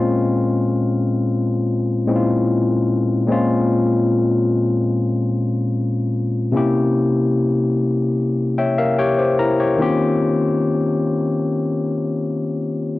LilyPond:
\new Staff \with { instrumentName = "Tine electric piano" } { \time 4/4 \key bes \dorian \tempo 4 = 74 << { r1 | r1 | r2 r8 <des'' e'' g''>16 <bes' e'' f''>16 <g' des'' g''>16 <g' c''>16 <e' bes' bes''>16 <g' des''>16~ | <g' des''>16 r2. r8. | } \\ { <bes, aes c' des' f'>2~ <bes, aes c' des' f'>8 <bes, aes c' des' fes' f'>4. | <bes, aes c' des' f'>1 | <c bes des' e' g'>1 | <ees bes c' des' f' g'>1 | } >> }